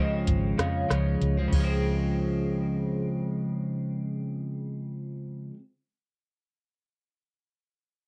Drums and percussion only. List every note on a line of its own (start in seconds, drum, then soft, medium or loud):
0.27 kick medium
0.27 closed hi-hat medium
0.59 cross-stick medium
0.59 closed hi-hat soft
0.90 cross-stick medium
0.90 closed hi-hat medium
1.22 closed hi-hat soft
1.52 kick medium
1.52 crash medium